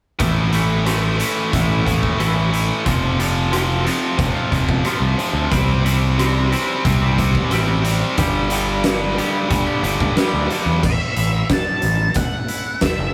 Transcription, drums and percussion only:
0.20 kick, closed hi-hat
0.53 closed hi-hat
0.86 cross-stick, closed hi-hat
1.20 closed hi-hat
1.53 kick, closed hi-hat
1.87 kick, closed hi-hat
2.03 kick
2.20 cross-stick, closed hi-hat
2.54 closed hi-hat
2.86 kick, closed hi-hat
3.20 closed hi-hat
3.53 cross-stick, closed hi-hat
3.87 closed hi-hat
4.19 kick, closed hi-hat
4.52 kick, closed hi-hat
4.69 kick
4.85 cross-stick, closed hi-hat
5.19 closed hi-hat
5.52 kick, closed hi-hat
5.86 closed hi-hat
6.19 cross-stick, closed hi-hat
6.52 closed hi-hat
6.85 kick, closed hi-hat
7.18 kick, closed hi-hat
7.35 kick
7.51 cross-stick, closed hi-hat
7.85 closed hi-hat
8.18 kick, closed hi-hat
8.50 closed hi-hat
8.84 snare, closed hi-hat
9.18 closed hi-hat
9.51 kick, closed hi-hat
9.84 closed hi-hat
10.00 kick
10.17 snare, closed hi-hat
10.51 closed hi-hat
10.83 kick, crash
11.17 closed hi-hat
11.50 kick, snare, closed hi-hat
11.82 closed hi-hat
12.14 kick, snare, closed hi-hat
12.48 closed hi-hat
12.81 kick, snare, closed hi-hat

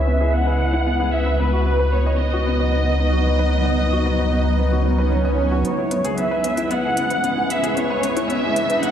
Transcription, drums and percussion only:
5.65 closed hi-hat
5.91 closed hi-hat
6.05 closed hi-hat
6.18 closed hi-hat
6.44 closed hi-hat
6.57 closed hi-hat
6.71 closed hi-hat
6.97 closed hi-hat
7.10 closed hi-hat
7.24 closed hi-hat
7.50 closed hi-hat
7.64 closed hi-hat
7.77 closed hi-hat
8.03 closed hi-hat
8.17 closed hi-hat
8.30 closed hi-hat
8.56 closed hi-hat
8.70 closed hi-hat
8.83 closed hi-hat

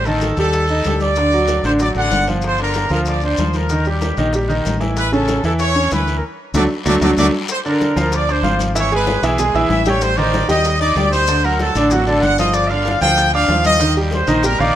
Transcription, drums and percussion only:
0.05 maracas
0.21 high bongo, high conga, short guiro, maracas
0.37 high bongo, short guiro, maracas
0.53 high bongo, high conga, long guiro, maracas
0.68 high bongo, maracas
0.84 high bongo, low bongo, high conga, short guiro, maracas
1.00 high bongo, high conga, short guiro, maracas
1.16 high bongo, high conga, long guiro, maracas
1.32 high conga, maracas
1.48 high bongo, high conga, short guiro, maracas
1.64 high bongo, high conga, short guiro, maracas
1.79 high bongo, high conga, long guiro, maracas
1.95 high bongo, high conga, maracas
2.11 high bongo, low bongo, high conga, short guiro, maracas
2.27 high bongo, high conga, short guiro, maracas
2.42 high bongo, high conga, long guiro, maracas
2.58 high conga, maracas
2.74 high bongo, high conga, short guiro, maracas
2.89 high bongo, high conga, short guiro, maracas
3.05 high bongo, high conga, long guiro, maracas
3.21 high bongo, high conga, maracas
3.37 high bongo, low bongo, high conga, short guiro, maracas
3.53 high bongo, high conga, short guiro, maracas
3.69 high bongo, high conga, long guiro, maracas
3.85 high conga, maracas
4.01 high bongo, high conga, short guiro, maracas
4.17 high bongo, high conga, short guiro, maracas
4.33 high bongo, long guiro, maracas
4.49 high bongo, maracas
4.65 high bongo, low bongo, high conga, short guiro, maracas
4.81 high bongo, high conga, short guiro, maracas
4.97 high bongo, high conga, long guiro, maracas
5.13 high conga, maracas
5.28 high bongo, high conga, short guiro, maracas
5.44 high bongo, high conga, short guiro, maracas
5.59 high bongo, high conga, long guiro, maracas
5.75 high bongo, high conga, maracas
5.91 high bongo, low bongo, high conga, short guiro, maracas
6.07 high bongo, short guiro, maracas
6.54 low bongo, high conga, long guiro, maracas
6.86 low bongo, high conga, long guiro, maracas
7.02 low bongo, high conga, long guiro, maracas
7.17 low bongo, high conga, long guiro, maracas
7.48 high bongo, high conga, long guiro, maracas
7.65 high bongo, high conga, maracas
7.81 high bongo, high conga, short guiro, maracas
7.96 high bongo, high conga, short guiro, maracas
8.12 high bongo, high conga, long guiro, maracas
8.28 high bongo, high conga, maracas
8.43 high bongo, low bongo, high conga, short guiro, maracas
8.59 high conga, short guiro, maracas
8.75 high bongo, high conga, long guiro, maracas
8.91 high bongo, high conga, maracas
9.07 high bongo, high conga, short guiro, maracas
9.23 high conga, short guiro, maracas
9.39 high bongo, high conga, low conga, maracas
9.55 high bongo, high conga, maracas
9.70 high bongo, low bongo, high conga, short guiro, maracas
9.85 high conga, short guiro, maracas
10.01 high bongo, high conga, long guiro, maracas
10.17 high bongo, high conga, maracas
10.34 high bongo, high conga, short guiro, maracas
10.49 high bongo, high conga, short guiro, maracas
10.64 high bongo, high conga, long guiro, maracas
10.81 high bongo, high conga, maracas
10.95 high bongo, low bongo, high conga, short guiro, maracas
11.13 high conga, short guiro, maracas
11.27 high bongo, high conga, long guiro, maracas
11.44 high bongo, high conga, maracas
11.59 high bongo, high conga, short guiro, maracas
11.75 high bongo, high conga, short guiro, maracas
11.91 high bongo, high conga, low conga, long guiro, maracas
12.07 high bongo, high conga, maracas
12.23 high bongo, low bongo, high conga, short guiro, maracas
12.38 high conga, short guiro, maracas
12.54 high bongo, high conga, long guiro, maracas
12.69 high bongo, maracas
12.85 high bongo, high conga, short guiro, maracas
13.01 high bongo, high conga, short guiro, maracas
13.17 high bongo, high conga, long guiro, maracas
13.33 high bongo, high conga, maracas
13.48 high bongo, low bongo, high conga, short guiro, maracas
13.64 high conga, short guiro, maracas
13.79 high bongo, high conga, long guiro, maracas
13.96 high bongo, maracas
14.11 high bongo, high conga, short guiro, maracas
14.27 high bongo, high conga, short guiro, maracas
14.43 high bongo, high conga, low conga, long guiro, maracas
14.59 high bongo, high conga, maracas

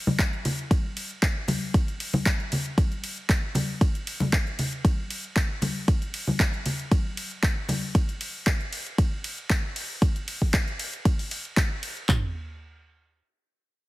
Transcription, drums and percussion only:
0.07 high conga, low conga
0.19 kick, clap, ride
0.33 closed hi-hat
0.45 open hi-hat, ride, low conga
0.59 closed hi-hat
0.71 kick, closed hi-hat, ride, high conga
0.97 open hi-hat, ride
1.11 closed hi-hat
1.23 kick, clap, closed hi-hat, ride
1.48 open hi-hat, ride, high conga, low conga
1.74 kick, closed hi-hat, ride
1.88 closed hi-hat
2.00 open hi-hat, ride
2.14 high conga, low conga
2.26 kick, clap, closed hi-hat, ride
2.40 closed hi-hat
2.52 open hi-hat, ride, low conga
2.66 closed hi-hat
2.78 kick, closed hi-hat, ride, high conga
2.92 closed hi-hat
3.04 open hi-hat, ride
3.18 closed hi-hat
3.29 kick, clap, closed hi-hat, ride
3.55 open hi-hat, ride, high conga, low conga
3.81 kick, closed hi-hat, ride
3.95 closed hi-hat
4.07 open hi-hat, ride
4.20 high conga, low conga
4.33 kick, clap, closed hi-hat, ride
4.47 closed hi-hat
4.59 open hi-hat, ride, low conga
4.73 closed hi-hat
4.85 kick, closed hi-hat, ride, high conga
5.11 open hi-hat, ride
5.24 closed hi-hat
5.36 kick, clap, closed hi-hat, ride
5.62 open hi-hat, ride, high conga, low conga
5.88 kick, closed hi-hat, ride
6.02 closed hi-hat
6.14 open hi-hat, ride
6.27 high conga, low conga
6.40 kick, clap, closed hi-hat, ride
6.54 closed hi-hat
6.66 open hi-hat, ride, low conga
6.80 closed hi-hat
6.91 kick, closed hi-hat, ride, high conga
7.17 open hi-hat, ride
7.31 closed hi-hat
7.43 kick, clap, closed hi-hat, ride
7.69 open hi-hat, ride, high conga, low conga
7.95 kick, closed hi-hat, ride
8.09 closed hi-hat
8.21 open hi-hat, ride
8.47 kick, clap, closed hi-hat, ride
8.61 closed hi-hat
8.73 open hi-hat, ride
8.87 closed hi-hat
8.98 kick, closed hi-hat, ride
9.24 open hi-hat, ride
9.38 closed hi-hat
9.50 kick, clap, closed hi-hat, ride
9.76 open hi-hat, ride
10.02 kick, closed hi-hat, ride
10.16 closed hi-hat
10.28 open hi-hat, ride
10.42 kick
10.54 kick, clap, closed hi-hat, ride
10.68 closed hi-hat
10.79 open hi-hat, ride
10.93 closed hi-hat
11.05 kick, closed hi-hat, ride
11.19 open hi-hat
11.31 open hi-hat, ride
11.45 closed hi-hat
11.57 kick, clap, closed hi-hat, ride
11.83 open hi-hat, ride
11.97 closed hi-hat
12.09 kick, clap, floor tom

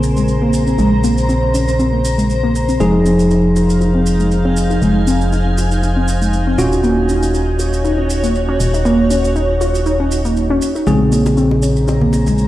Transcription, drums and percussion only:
0.03 shaker
0.17 shaker
0.28 shaker
0.54 shaker
0.67 shaker
0.79 shaker
1.04 shaker
1.18 shaker
1.29 shaker
1.54 shaker
1.68 shaker
1.80 shaker
2.05 shaker
2.19 shaker
2.30 shaker
2.55 shaker
2.69 shaker
2.80 shaker
3.06 shaker
3.19 shaker
3.31 shaker
3.56 shaker
3.70 shaker
3.81 shaker
4.06 shaker
4.20 shaker
4.32 shaker
4.57 shaker
4.71 shaker
4.82 shaker
5.07 shaker
5.21 shaker
5.33 shaker
5.58 shaker
5.72 shaker
5.83 shaker
6.08 shaker
6.22 shaker
6.33 shaker
6.59 shaker
6.72 shaker
6.84 shaker
7.09 shaker
7.23 shaker
7.34 shaker
7.59 shaker
7.73 shaker
7.85 shaker
8.10 shaker
8.24 shaker
8.35 shaker
8.60 shaker
8.74 shaker
8.86 shaker
9.11 shaker
9.25 shaker
9.36 shaker
9.61 shaker
9.75 shaker
9.86 shaker
10.12 shaker
10.25 shaker
10.37 shaker
10.62 shaker
10.76 shaker
10.87 high bongo, shaker
11.12 shaker
11.26 high bongo, shaker
11.37 shaker
11.51 high bongo
11.63 shaker
11.76 shaker
11.88 high bongo, shaker
12.01 low conga
12.13 high bongo, shaker
12.27 high conga, shaker
12.38 shaker

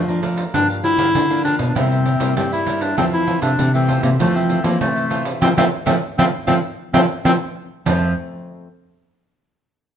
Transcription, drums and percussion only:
0.09 pandeiro
0.23 pandeiro
0.38 pandeiro
0.54 pandeiro
0.70 pandeiro
0.84 pandeiro
0.98 pandeiro
1.15 pandeiro
1.31 pandeiro
1.45 pandeiro
1.59 pandeiro
1.76 pandeiro
1.92 pandeiro
2.06 pandeiro
2.20 pandeiro
2.37 pandeiro
2.53 pandeiro
2.67 pandeiro
2.81 pandeiro
2.98 pandeiro
3.14 pandeiro
3.28 pandeiro
3.42 pandeiro
3.59 pandeiro
3.75 pandeiro
3.88 pandeiro
4.03 pandeiro
4.20 pandeiro
4.36 pandeiro
4.50 pandeiro
4.64 pandeiro
4.81 pandeiro
4.97 pandeiro
5.11 pandeiro
5.25 pandeiro
5.42 pandeiro
5.58 pandeiro
5.87 pandeiro
6.19 pandeiro
6.48 pandeiro
6.94 pandeiro
7.25 pandeiro
7.86 pandeiro

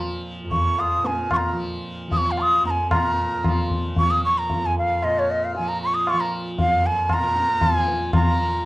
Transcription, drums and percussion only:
0.52 tabla tin, tabla ge
0.79 tabla na
1.05 tabla te
1.31 tabla na, tabla ge
2.11 tabla tin, tabla ge
2.37 tabla na
2.65 tabla te
2.91 tabla na, tabla ge
3.44 tabla na, tabla ge
3.70 tabla ge
3.97 tabla tin, tabla ge
4.50 tabla tin, tabla ge
5.02 tabla na
5.54 tabla tin
6.07 tabla na
6.58 tabla tin, tabla ge
7.10 tabla na, tabla ge
7.36 tabla te
7.62 tabla na, tabla ge
7.88 tabla te
8.13 tabla na, tabla ge

